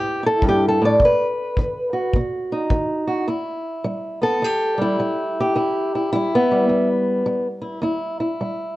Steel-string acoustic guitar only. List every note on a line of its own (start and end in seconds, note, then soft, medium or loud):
0.00 0.38 A2 medium
0.00 0.24 G4 loud
0.23 0.98 E4 medium
0.23 0.44 A4 medium
0.43 0.79 G2 medium
0.49 0.64 G4 medium
0.68 0.84 A4 medium
0.82 1.01 A2 medium
0.82 1.02 D5 medium
1.01 1.53 B2 medium
1.01 2.16 B4 loud
1.58 2.10 D#3 medium
1.93 3.06 F#4 medium
2.16 2.67 B2 medium
2.52 3.26 D#4 medium
2.71 3.23 D#3 medium
3.07 3.25 F#4 soft
3.28 3.80 E2 medium
3.28 4.22 E4 soft
3.84 4.37 G3 medium
4.21 4.44 B3 soft
4.21 4.80 A4 medium
4.42 4.95 E2 medium
4.42 5.38 G4 medium
4.78 4.99 G3 soft
4.78 5.55 E4 medium
5.00 5.52 G3 medium
5.40 6.33 G4 medium
5.55 6.08 E2 medium
5.55 5.95 E4 medium
5.95 6.12 E4 soft
6.12 6.50 G3 medium
6.12 6.88 E4 medium
6.35 7.47 B3 medium
6.51 7.26 G3 medium
6.69 7.22 E2 medium
7.26 7.79 G3 medium
7.62 7.82 E4 soft
7.82 8.35 E2 medium
7.82 8.19 E4 medium
8.20 8.76 E4 soft
8.40 8.76 G3 medium